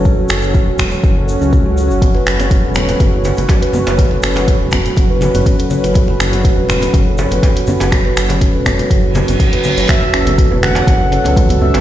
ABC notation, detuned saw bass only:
X:1
M:4/4
L:1/16
Q:"Swing 16ths" 1/4=122
K:F#m
V:1 name="Detuned saw bass" clef=bass
F,,,2 F,,,3 E,,,3 F,,,3 C,,4 F,,,- | F,,,2 F,,,3 E,,,3 F,,,3 F,,, z3 F,,,- | F,,,2 F,,,3 E,,,3 F,,,3 F,,, z3 F,,,- | F,,,2 F,,,3 E,,,3 F,,,3 F,,, z3 F,,,- |
F,,,2 F,,,3 E,,,3 F,,,3 F,,, z3 F,,, | z2 F,,,3 E,,,3 F,,,3 C,,4 F,,, |]